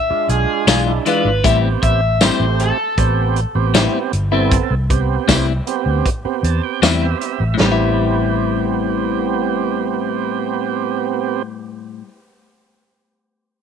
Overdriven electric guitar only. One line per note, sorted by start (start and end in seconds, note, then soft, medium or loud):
0.00 0.27 E5 medium
0.30 0.67 G#4 medium
0.68 0.79 G#4 medium
1.07 1.46 B4 medium
1.45 1.55 E5 loud
1.83 2.22 E5 medium
2.22 2.61 C5 medium
2.60 6.79 A4 medium